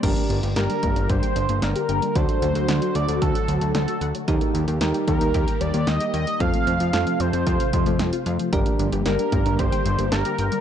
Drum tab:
CC |x---------------|----------------|----------------|----------------|
HH |xxxxxxxxxxxxxxxx|xxxxxxxxxxxxxxxx|xxxxxxxxxxxxxxxx|xxxxxxxxxxxxxxxx|
SD |----o-------o---|----o-------o---|----o-------o---|----o-------o---|
BD |o-----o-o-------|o-------o-------|o-----o-o-------|o-------o-o-----|

CC |----------------|
HH |xxxxxxxxxxxxxxxx|
SD |----o-------o---|
BD |o-----o-o-------|